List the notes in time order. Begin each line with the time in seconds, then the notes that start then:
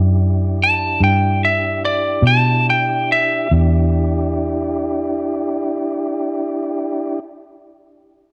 Already playing: F#2 D4 E4 G4
0.64 A5
1.00 G2 G5
1.45 E5
1.85 D5
2.22 B2
2.27 A5
2.70 G5
3.12 E5
3.51 E2 D4 E4 G4